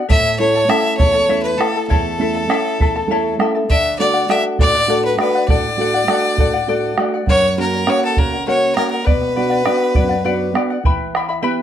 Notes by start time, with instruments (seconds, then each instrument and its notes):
0.09 nylon-string guitar A2, charango E4 A4 C#5 E5 A5, violin E5, bombo low
0.39 nylon-string guitar A3 C#4 E4, charango E4 A4 E5 A5, violin C#5
0.55 charango E4 A4 A5
0.67 nylon-string guitar A3 C#4 E4, charango E4 A4 C#5 E5 A5, violin E5, bombo rim
0.98 nylon-string guitar E2, charango E4 A4 E5 A5, violin C#5, bombo low
1.13 charango E4 A4 A5
1.28 nylon-string guitar A3 C#4 E4, charango E4 A4 C#5 E5 A5
1.43 violin B4
1.58 nylon-string guitar A3 C#4 E4, charango E4 A4 E5 A5, violin A4, bombo rim
1.76 charango E4 A4 A5
1.88 nylon-string guitar E2, charango E4 A4 C#5 E5 A5, violin A4, bombo low
2.18 nylon-string guitar A3 C#4 E4, charango E4 A4 E5 A5
2.35 charango E4 A4 A5
2.47 nylon-string guitar A3 C#4 E4, charango E4 A4 C#5 E5 A5, bombo rim
2.79 nylon-string guitar E2, charango E4 A4 E5 A5, bombo low
2.96 charango E4 A4 A5, bombo rim
3.07 nylon-string guitar A3 C#4 E4 A4, charango C#5 E5
3.11 charango E4 A4 A5
3.38 nylon-string guitar A3 C#4 E4 E5, charango E4 A4 E5 A5, bombo rim
3.55 charango E4 A4 A5
3.69 nylon-string guitar D3, charango A4 D5 F#5, violin E5, bombo low
3.99 nylon-string guitar A3 D4 F#4, charango A4 D5 F#5, violin D5
4.14 charango D5 F#5
4.29 nylon-string guitar A3 D4 F#4, charango A4 D5 F#5, violin E5, bombo rim
4.58 nylon-string guitar A2, charango A4 D5 F#5, violin D5, bombo low
4.75 charango D5 F#5
4.87 nylon-string guitar A3 D4 F#4, charango A4 D5 F#5
5.05 violin B4
5.17 nylon-string guitar A3 D4 F#4, charango A4 D5, violin B4, bombo rim
5.22 charango F#5
5.35 charango D5 F#5
5.48 nylon-string guitar A2, charango A4 D5 F#5, violin D5, bombo low
5.77 nylon-string guitar A3 D4 F#4, charango A4
5.81 charango D5 F#5
5.94 charango D5 F#5
6.07 nylon-string guitar A3 D4 F#4, charango A4 D5 F#5, bombo rim
6.36 nylon-string guitar A2, charango A4 D5 F#5, bombo low
6.54 charango D5 F#5
6.67 nylon-string guitar A3 D4 F#4, charango A4 D5 F#5
6.97 nylon-string guitar A3 D4 F#4, charango A4 D5 F#5, bombo rim
7.14 charango D5 F#5
7.26 nylon-string guitar F#2, charango A#4 C#5, violin C#5, bombo low
7.31 charango F#5
7.57 nylon-string guitar A#3 C#4 F#4, charango A#4 C#5 F#5, violin A#4
7.73 charango C#5 F#5
7.86 nylon-string guitar A#3 C#4 F#4, charango A#4 C#5 F#5, violin C#5, bombo rim
8.05 violin A4
8.17 nylon-string guitar C#3, charango A#4 C#5 F#5, violin A#4, bombo low
8.33 charango C#5 F#5
8.47 nylon-string guitar A#3 C#4 F#4, charango A#4 C#5 F#5, violin C#5
8.76 nylon-string guitar A#3 C#4 F#4, violin A#4, charango A#4 C#5 F#5, bombo rim
8.91 violin A#4, charango C#5 F#5
9.05 nylon-string guitar B2, violin B4, charango B4 D5 F#5, bombo low
9.22 bombo rim
9.36 nylon-string guitar B3 D4 F#4, charango B4 D5 F#5
9.50 charango D5 F#5
9.65 nylon-string guitar B3 D4 F#4, charango B4 D5 F#5, bombo rim
9.95 nylon-string guitar F#2, charango B4 D5 F#5, bombo low
10.09 charango D5 F#5
10.24 nylon-string guitar B3 D4 F#4, charango B4 D5 F#5, bombo rim
10.53 nylon-string guitar B3 D4 F#4, charango B4 D5 F#5, bombo rim
10.70 charango D5 F#5, bombo rim
10.84 nylon-string guitar E3, charango E4 B4 E5 G5 B5, bombo low
11.15 charango E4 E5 G5 B5, bombo rim
11.29 charango E4 E5 B5
11.42 nylon-string guitar B3 E4 G4, charango E4 B4 E5 G5 B5